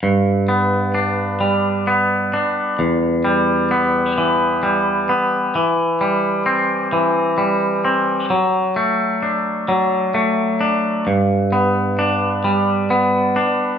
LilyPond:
\new Staff \with { instrumentName = "Clean electric guitar" } { \time 6/8 \key g \major \tempo 4. = 43 g,8 b8 d'8 g8 b8 d'8 | e,8 g8 b8 e8 g8 b8 | e8 g8 c'8 e8 g8 c'8 | fis8 a8 d'8 fis8 a8 d'8 |
g,8 b8 d'8 g8 b8 d'8 | }